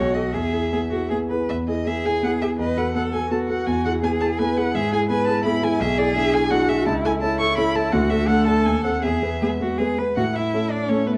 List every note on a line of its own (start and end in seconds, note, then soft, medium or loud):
0.00 0.14 B1 medium
0.00 0.36 F#4 medium
0.00 0.15 C#5 loud
0.14 0.32 F#4 medium
0.14 0.32 A4 medium
0.14 0.34 D#5 medium
0.33 0.52 E2 medium
0.33 0.68 G#4 medium
0.33 1.10 E5 loud
0.53 0.70 E4 medium
0.53 0.70 G#4 medium
0.72 0.89 B3 medium
0.72 0.89 E4 medium
0.72 0.80 G#4 medium
0.72 0.90 G#4 medium
0.91 1.09 E4 medium
0.91 1.09 F#4 medium
0.91 1.09 G#4 medium
1.10 1.28 B3 medium
1.10 1.28 E4 medium
1.10 1.18 G#4 medium
1.10 1.29 G#4 medium
1.30 1.47 E4 medium
1.30 1.47 G#4 medium
1.30 1.49 B4 medium
1.49 1.67 E2 medium
1.49 1.57 E5 loud
1.68 1.84 E4 medium
1.68 1.85 G#4 medium
1.68 1.89 D#5 loud
1.86 2.03 B3 medium
1.86 2.03 E4 medium
1.86 2.55 G#4 medium
1.86 2.03 G#4 medium
1.86 2.07 E5 loud
2.05 2.21 E4 medium
2.05 2.21 G#4 medium
2.05 2.23 G#5 loud
2.23 2.39 B3 medium
2.23 2.39 E4 medium
2.23 2.39 G#4 medium
2.23 2.31 F#5 loud
2.41 2.57 E4 medium
2.41 2.57 G#4 medium
2.41 2.49 E5 medium
2.59 2.76 E2 medium
2.59 2.94 B4 medium
2.59 2.79 D#5 loud
2.77 2.93 F#4 medium
2.77 2.93 A4 medium
2.77 2.95 F#5 loud
2.95 3.11 B3 medium
2.95 3.11 F#4 medium
2.95 3.29 A4 medium
2.95 3.12 A4 medium
2.95 3.03 F#5 loud
3.13 3.29 F#4 medium
3.13 3.29 A4 medium
3.13 3.31 G#5 loud
3.30 3.47 B3 medium
3.30 4.01 F#4 medium
3.30 3.47 F#4 medium
3.30 3.48 A4 medium
3.30 3.39 A5 loud
3.48 3.65 F#4 medium
3.48 3.65 A4 medium
3.48 3.68 F#5 loud
3.66 3.84 E2 medium
3.66 3.85 G#5 loud
3.85 4.01 E4 medium
3.85 4.01 G#4 medium
3.85 3.92 F#5 loud
4.03 4.19 B3 medium
4.03 4.19 E4 medium
4.03 4.40 G#4 medium
4.03 4.19 G#4 medium
4.03 4.11 G#5 loud
4.21 4.37 E4 medium
4.21 4.37 G#4 medium
4.21 4.28 A5 loud
4.39 4.55 B3 medium
4.39 4.55 E4 medium
4.39 4.55 G#4 medium
4.39 4.74 B4 loud
4.39 4.59 G#5 loud
4.57 4.73 E4 medium
4.57 4.73 G#4 medium
4.57 4.76 F#5 loud
4.75 4.92 G#2 loud
4.75 5.09 G#4 loud
4.75 4.92 E5 loud
4.92 5.08 E4 medium
4.92 5.08 G#4 medium
4.92 4.99 G#5 loud
5.09 5.25 B3 medium
5.09 5.26 E4 medium
5.09 5.26 G#4 medium
5.09 5.44 B4 loud
5.09 5.27 G#5 loud
5.27 5.43 E4 medium
5.27 5.43 G#4 medium
5.27 5.44 A5 loud
5.44 5.61 B3 medium
5.44 5.82 E4 medium
5.44 5.61 E4 medium
5.44 5.61 G#4 medium
5.44 5.65 B5 loud
5.62 5.78 E4 medium
5.62 5.79 G#4 medium
5.62 5.83 G#5 loud
5.80 5.97 B1 loud
5.80 6.51 G#4 loud
5.80 6.00 E5 loud
5.98 6.14 E4 medium
5.98 6.14 G#4 medium
5.98 6.15 D5 loud
6.15 6.31 D4 medium
6.15 6.31 E4 medium
6.15 6.32 G#4 medium
6.15 6.35 E5 loud
6.33 6.49 E4 medium
6.33 6.49 G#4 medium
6.33 6.52 G#5 loud
6.51 6.67 D4 medium
6.51 6.67 E4 medium
6.51 6.88 F#4 medium
6.51 6.67 G#4 medium
6.51 6.70 F#5 loud
6.68 6.84 E4 medium
6.68 6.85 G#4 medium
6.68 6.86 E5 loud
6.86 7.04 C#2 loud
6.86 7.22 E4 loud
6.86 6.93 A5 loud
7.04 7.20 E4 medium
7.04 7.21 A4 medium
7.04 7.12 G#5 loud
7.22 7.38 C#4 medium
7.22 7.95 E4 loud
7.22 7.38 E4 medium
7.22 7.39 A4 medium
7.22 7.39 A5 loud
7.40 7.56 E4 medium
7.40 7.56 A4 medium
7.40 7.57 C#6 loud
7.57 7.73 C#4 medium
7.57 7.73 E4 medium
7.57 7.74 A4 medium
7.57 7.77 B5 loud
7.75 7.91 E4 medium
7.75 7.91 A4 medium
7.75 7.94 A5 loud
7.92 8.10 D2 loud
7.92 8.29 F#4 loud
7.92 8.11 F#5 loud
8.10 8.27 D4 medium
8.10 8.27 A4 medium
8.10 8.28 E5 loud
8.28 8.45 A3 medium
8.28 8.45 D4 medium
8.28 9.02 A4 loud
8.28 8.46 A4 medium
8.28 8.46 F#5 loud
8.47 8.64 D4 medium
8.47 8.64 A4 medium
8.47 8.67 A5 loud
8.65 8.84 D#2 medium
8.65 8.84 G#5 loud
8.84 9.01 C4 medium
8.84 9.02 A4 medium
8.84 9.04 F#5 loud
9.02 9.22 E2 medium
9.02 9.36 G#4 medium
9.02 9.79 E5 medium
9.22 9.40 B3 medium
9.22 9.40 B4 medium
9.42 9.59 G#3 medium
9.42 9.59 B3 medium
9.42 9.49 G#4 medium
9.42 9.59 B4 medium
9.61 9.78 B3 medium
9.61 9.80 F#4 medium
9.61 9.78 B4 medium
9.78 9.96 G#3 medium
9.78 9.97 B3 medium
9.78 10.00 G#4 medium
9.78 9.97 B4 medium
9.98 10.15 B3 medium
9.98 10.16 B4 medium
9.98 10.15 B4 medium
10.16 10.52 A2 medium
10.16 10.24 F#4 loud
10.16 10.37 F#5 loud
10.35 10.72 E4 medium
10.35 10.73 E5 loud
10.54 10.86 A3 medium
10.54 10.86 C#4 medium
10.54 10.86 A4 medium
10.71 10.90 D4 medium
10.71 10.90 D5 loud
10.89 11.18 A3 medium
10.89 11.06 C#4 medium
10.89 11.18 C#4 medium
10.89 11.18 A4 medium
10.89 11.08 C#5 loud
11.07 11.14 B3 medium
11.07 11.15 B4 loud